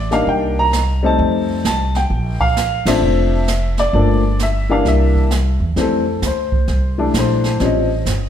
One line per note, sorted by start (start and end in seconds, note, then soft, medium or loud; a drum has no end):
0.00 0.23 A1 medium
0.00 0.14 D5 medium
0.11 0.70 G3 medium
0.11 0.70 A#3 medium
0.11 0.70 D4 medium
0.11 0.70 D#4 medium
0.11 0.28 F5 medium
0.11 snare soft
0.27 1.15 C2 medium
0.27 0.59 G5 medium
0.27 brush sweep soft
0.27 kick soft
0.59 1.01 A#5 loud
0.73 snare medium
0.73 hi-hat pedal medium
1.03 1.61 G3 medium
1.03 1.62 A3 medium
1.03 1.62 C4 medium
1.03 1.62 D#4 medium
1.03 1.62 A5 medium
1.19 1.61 F2 medium
1.19 brush sweep medium
1.19 kick soft
1.65 2.07 C2 medium
1.65 1.96 A5 medium
1.65 snare medium
1.65 hi-hat pedal medium
1.95 2.43 G5 medium
1.95 snare soft
2.10 2.82 A#1 medium
2.10 brush sweep medium
2.10 kick soft
2.40 2.88 F5 medium
2.40 kick medium
2.57 snare medium
2.57 hi-hat pedal medium
2.85 3.01 A1 medium
2.85 3.45 F3 medium
2.85 3.45 A3 medium
2.85 3.45 C4 medium
2.85 3.46 D4 medium
2.85 3.75 E5 medium
2.85 snare medium
2.85 ride medium
3.02 3.90 F1 medium
3.02 brush sweep soft
3.48 snare medium
3.48 hi-hat pedal medium
3.77 4.36 D5 medium
3.77 snare medium
3.93 4.81 G1 medium
3.93 4.21 F3 medium
3.93 4.21 A3 medium
3.93 4.21 A#3 medium
3.93 4.21 D4 medium
3.93 brush sweep medium
3.93 kick soft
4.39 4.72 E5 medium
4.39 snare medium
4.39 hi-hat pedal soft
4.69 5.28 E3 medium
4.69 5.28 G3 medium
4.69 5.28 A#3 medium
4.69 5.29 D4 medium
4.69 4.85 F5 medium
4.85 5.57 C2 medium
4.85 5.29 E5 medium
4.85 brush sweep soft
4.85 kick soft
4.85 snare soft
5.15 kick soft
5.31 snare medium
5.31 hi-hat pedal medium
5.60 5.75 E2 medium
5.76 6.21 F2 medium
5.76 6.04 E3 medium
5.76 6.04 G3 medium
5.76 6.04 A3 medium
5.76 6.04 C4 medium
5.76 brush sweep medium
5.76 kick soft
5.76 snare soft
5.82 6.22 A4 medium
6.22 6.67 D2 medium
6.22 kick soft
6.22 snare medium
6.22 hi-hat pedal medium
6.26 6.96 C5 medium
6.52 kick medium
6.68 7.13 C2 medium
6.68 brush sweep soft
6.68 snare soft
6.98 7.57 E3 medium
6.98 7.57 G3 medium
6.98 7.57 A3 medium
6.98 7.57 D4 medium
7.14 7.58 A#1 medium
7.14 kick soft
7.14 snare medium
7.14 hi-hat pedal medium
7.19 7.59 C5 medium
7.44 snare soft
7.60 8.04 A1 medium
7.60 7.87 F3 medium
7.60 7.88 G3 medium
7.60 7.87 C4 medium
7.60 7.88 C#4 medium
7.60 brush sweep soft
7.60 kick soft
7.60 snare soft
7.64 8.29 D#5 medium
8.06 8.29 G1 medium
8.06 kick soft
8.06 snare medium
8.06 hi-hat pedal medium